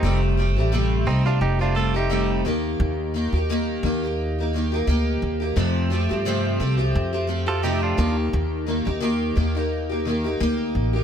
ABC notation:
X:1
M:4/4
L:1/16
Q:"Swing 16ths" 1/4=87
K:Eblyd
V:1 name="Clean electric guitar"
[CE] z4 z [CE] [DF] [EG] [DF] [FA] [EG]3 z2 | z16 | z8 z3 [FA] [EG] [DF]2 z | z16 |]
V:2 name="Steel-string acoustic guitar"
[F,,C,G,A,CG]2 [G,A,CG] [G,A,CG] [F,,C,G,A,CG]2 [G,A,CG] [G,A,CG]2 [G,A,CG] [G,A,CG] [G,A,CG] [F,,C,G,A,CG]2 [E,B,EG]2- | [E,B,EG]2 [E,B,EG] [B,EG] [E,B,EG]2 [E,B,EG] [B,EG]2 [B,EG] [E,B,EG] [B,EG] [B,EG]3 [B,EG] | [F,,C,F,A,CG]2 [F,A,CG] [F,A,CG] [F,,C,F,A,CG]2 [F,A,CG] [F,A,CG]2 [F,A,CG] [F,A,CG] [F,A,CG] [F,,C,F,A,CG]2 [E,B,EG]2- | [E,B,EG]2 [E,B,EG] [B,EG] [E,B,EG]2 [E,B,EG] [B,EG]2 [B,EG] [E,B,EG] [B,EG] [B,EG]3 [B,EG] |]
V:3 name="Upright bass" clef=bass
F,,,3 A,,,3 C,,2 F,,,6 E,,2 | E,,3 E,,3 E,,6 D,,2 E,,2 | F,,3 G,,3 C,,2 F,,6 E,,2 | E,,3 E,,3 E,,6 D,,2 A,,,2 |]